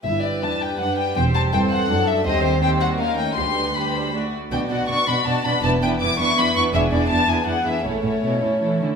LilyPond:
<<
  \new Staff \with { instrumentName = "Violin section" } { \time 3/4 \key g \major \tempo 4 = 161 e''8 d''8 a''8 g''8 fis''8 g''8 | g''8 a''8 g''8 fis''4 e''8 | ees''8 c''8 g''8 fis''8 f''8 g''8 | c'''4 b''4 r4 |
\key e \dorian g''8 fis''8 cis'''8 b''8 a''8 b''8 | a''8 g''8 d'''8 cis'''8 b''8 cis'''8 | e''8 d''8 a''8 gis''8 fis''8 e''8 | cis''2~ cis''8 r8 | }
  \new Staff \with { instrumentName = "Violin section" } { \time 3/4 \key g \major << { b'2. | c''4 c''4 a'4 | c''4 c''4 bes'4 | b'4 b'8 c''8 d''8 r8 |
\key e \dorian d''8 d''8 d''8 d''8 d''8 d''8 | b'8 b'8 b'8 b'8 b'8 b'8 | gis'8 gis'8 gis'8 gis'8 gis'8 gis'8 | a'8 a'8 a'8 a'8 a'8 a'8 | } \\ { g'2. | g'4 a'4 a'4 | g'4 g'8 fis'8 ees'4 | g'4 g'4 fis'8 r8 |
fis'8 fis'8 fis'8 fis'8 fis'8 fis'8 | e'8 e'8 e'8 e'8 e'8 e'8 | e'8 e'8 e'8 e'8 e'8 e'8 | e'8 e'8 e'8 e'8 e'8 e'8 | } >> }
  \new Staff \with { instrumentName = "Viola section" } { \time 3/4 \key g \major << { e'4 d'4 d'4 | c'4 c'4 d'4 | c'4 c'4 des'4 | d'4 d'4 d'8 r8 |
\key e \dorian d'8 d'8 d'8 d'8 d'8 d'8 | d'8 d'8 d'8 d'8 d'8 d'8 | d'8 d'8 d'8 d'8 d'8 d'8 | cis'8 cis'8 cis'8 cis'8 cis'8 cis'8 | } \\ { g2. | g4 e4 fis4 | g4 g4 bes8 a8 | g4 g4 a8 r8 |
b8 b8 b8 b8 b8 b8 | b8 b8 b8 b8 b8 b8 | b8 b8 b8 b8 b8 b8 | a8 a8 a8 a8 a8 a8 | } >> }
  \new Staff \with { instrumentName = "Cello section" } { \clef bass \time 3/4 \key g \major g,4 e,4 fis,4 | e,4 g,4 fis,4 | ees,2. | d,2~ d,8 r8 |
\key e \dorian b,8 b,8 b,8 b,8 b,8 b,8 | e,8 e,8 e,8 e,8 e,8 e,8 | e,8 e,8 e,8 e,8 e,8 e,8 | a,8 a,8 b,8 a,8 e8 d8 | }
  \new Staff \with { instrumentName = "Double bass section" } { \clef bass \time 3/4 \key g \major g,,4 r2 | e,,4 r2 | ees,4 r2 | d,4 r2 |
\key e \dorian b,,8 r2 r8 | e,,8 r2 r8 | e,,8 r2 r8 | a,,8 r2 r8 | }
>>